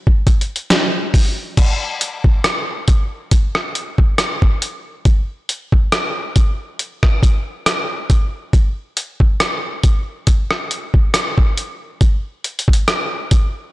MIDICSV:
0, 0, Header, 1, 2, 480
1, 0, Start_track
1, 0, Tempo, 869565
1, 869, Time_signature, 4, 2, 24, 8
1, 7575, End_track
2, 0, Start_track
2, 0, Title_t, "Drums"
2, 38, Note_on_c, 9, 36, 91
2, 93, Note_off_c, 9, 36, 0
2, 147, Note_on_c, 9, 42, 55
2, 148, Note_on_c, 9, 36, 100
2, 203, Note_off_c, 9, 36, 0
2, 203, Note_off_c, 9, 42, 0
2, 228, Note_on_c, 9, 42, 53
2, 283, Note_off_c, 9, 42, 0
2, 308, Note_on_c, 9, 42, 52
2, 363, Note_off_c, 9, 42, 0
2, 388, Note_on_c, 9, 38, 107
2, 389, Note_on_c, 9, 42, 80
2, 443, Note_off_c, 9, 38, 0
2, 445, Note_off_c, 9, 42, 0
2, 629, Note_on_c, 9, 36, 102
2, 629, Note_on_c, 9, 46, 67
2, 684, Note_off_c, 9, 36, 0
2, 684, Note_off_c, 9, 46, 0
2, 869, Note_on_c, 9, 36, 106
2, 869, Note_on_c, 9, 42, 58
2, 869, Note_on_c, 9, 49, 89
2, 924, Note_off_c, 9, 36, 0
2, 924, Note_off_c, 9, 42, 0
2, 924, Note_off_c, 9, 49, 0
2, 1109, Note_on_c, 9, 42, 76
2, 1165, Note_off_c, 9, 42, 0
2, 1238, Note_on_c, 9, 36, 91
2, 1294, Note_off_c, 9, 36, 0
2, 1348, Note_on_c, 9, 37, 118
2, 1348, Note_on_c, 9, 42, 61
2, 1403, Note_off_c, 9, 37, 0
2, 1403, Note_off_c, 9, 42, 0
2, 1588, Note_on_c, 9, 42, 64
2, 1590, Note_on_c, 9, 36, 93
2, 1643, Note_off_c, 9, 42, 0
2, 1645, Note_off_c, 9, 36, 0
2, 1829, Note_on_c, 9, 42, 65
2, 1830, Note_on_c, 9, 36, 86
2, 1884, Note_off_c, 9, 42, 0
2, 1886, Note_off_c, 9, 36, 0
2, 1959, Note_on_c, 9, 37, 63
2, 2015, Note_off_c, 9, 37, 0
2, 2071, Note_on_c, 9, 42, 58
2, 2127, Note_off_c, 9, 42, 0
2, 2199, Note_on_c, 9, 36, 91
2, 2254, Note_off_c, 9, 36, 0
2, 2309, Note_on_c, 9, 37, 99
2, 2310, Note_on_c, 9, 42, 72
2, 2364, Note_off_c, 9, 37, 0
2, 2365, Note_off_c, 9, 42, 0
2, 2440, Note_on_c, 9, 36, 81
2, 2496, Note_off_c, 9, 36, 0
2, 2550, Note_on_c, 9, 42, 61
2, 2605, Note_off_c, 9, 42, 0
2, 2789, Note_on_c, 9, 42, 57
2, 2790, Note_on_c, 9, 36, 121
2, 2844, Note_off_c, 9, 42, 0
2, 2845, Note_off_c, 9, 36, 0
2, 3031, Note_on_c, 9, 42, 77
2, 3086, Note_off_c, 9, 42, 0
2, 3160, Note_on_c, 9, 36, 85
2, 3215, Note_off_c, 9, 36, 0
2, 3269, Note_on_c, 9, 37, 107
2, 3269, Note_on_c, 9, 42, 62
2, 3324, Note_off_c, 9, 42, 0
2, 3325, Note_off_c, 9, 37, 0
2, 3509, Note_on_c, 9, 42, 67
2, 3510, Note_on_c, 9, 36, 94
2, 3564, Note_off_c, 9, 42, 0
2, 3566, Note_off_c, 9, 36, 0
2, 3750, Note_on_c, 9, 42, 64
2, 3805, Note_off_c, 9, 42, 0
2, 3880, Note_on_c, 9, 36, 90
2, 3880, Note_on_c, 9, 37, 63
2, 3935, Note_off_c, 9, 36, 0
2, 3935, Note_off_c, 9, 37, 0
2, 3989, Note_on_c, 9, 36, 94
2, 3992, Note_on_c, 9, 42, 62
2, 4045, Note_off_c, 9, 36, 0
2, 4048, Note_off_c, 9, 42, 0
2, 4230, Note_on_c, 9, 37, 105
2, 4231, Note_on_c, 9, 42, 77
2, 4285, Note_off_c, 9, 37, 0
2, 4286, Note_off_c, 9, 42, 0
2, 4470, Note_on_c, 9, 36, 92
2, 4470, Note_on_c, 9, 42, 61
2, 4525, Note_off_c, 9, 36, 0
2, 4525, Note_off_c, 9, 42, 0
2, 4710, Note_on_c, 9, 36, 117
2, 4710, Note_on_c, 9, 42, 58
2, 4765, Note_off_c, 9, 36, 0
2, 4765, Note_off_c, 9, 42, 0
2, 4950, Note_on_c, 9, 42, 71
2, 5006, Note_off_c, 9, 42, 0
2, 5079, Note_on_c, 9, 36, 90
2, 5134, Note_off_c, 9, 36, 0
2, 5189, Note_on_c, 9, 42, 61
2, 5190, Note_on_c, 9, 37, 108
2, 5245, Note_off_c, 9, 37, 0
2, 5245, Note_off_c, 9, 42, 0
2, 5429, Note_on_c, 9, 42, 70
2, 5430, Note_on_c, 9, 36, 92
2, 5484, Note_off_c, 9, 42, 0
2, 5485, Note_off_c, 9, 36, 0
2, 5668, Note_on_c, 9, 42, 63
2, 5670, Note_on_c, 9, 36, 90
2, 5724, Note_off_c, 9, 42, 0
2, 5725, Note_off_c, 9, 36, 0
2, 5799, Note_on_c, 9, 37, 66
2, 5854, Note_off_c, 9, 37, 0
2, 5911, Note_on_c, 9, 42, 60
2, 5966, Note_off_c, 9, 42, 0
2, 6038, Note_on_c, 9, 36, 90
2, 6093, Note_off_c, 9, 36, 0
2, 6148, Note_on_c, 9, 37, 107
2, 6150, Note_on_c, 9, 42, 78
2, 6204, Note_off_c, 9, 37, 0
2, 6205, Note_off_c, 9, 42, 0
2, 6280, Note_on_c, 9, 36, 87
2, 6335, Note_off_c, 9, 36, 0
2, 6389, Note_on_c, 9, 42, 61
2, 6445, Note_off_c, 9, 42, 0
2, 6629, Note_on_c, 9, 36, 117
2, 6629, Note_on_c, 9, 42, 59
2, 6684, Note_off_c, 9, 36, 0
2, 6684, Note_off_c, 9, 42, 0
2, 6869, Note_on_c, 9, 42, 60
2, 6924, Note_off_c, 9, 42, 0
2, 6949, Note_on_c, 9, 42, 66
2, 6999, Note_on_c, 9, 36, 91
2, 7004, Note_off_c, 9, 42, 0
2, 7029, Note_on_c, 9, 42, 65
2, 7054, Note_off_c, 9, 36, 0
2, 7084, Note_off_c, 9, 42, 0
2, 7108, Note_on_c, 9, 37, 110
2, 7108, Note_on_c, 9, 42, 62
2, 7164, Note_off_c, 9, 37, 0
2, 7164, Note_off_c, 9, 42, 0
2, 7348, Note_on_c, 9, 42, 70
2, 7350, Note_on_c, 9, 36, 93
2, 7403, Note_off_c, 9, 42, 0
2, 7405, Note_off_c, 9, 36, 0
2, 7575, End_track
0, 0, End_of_file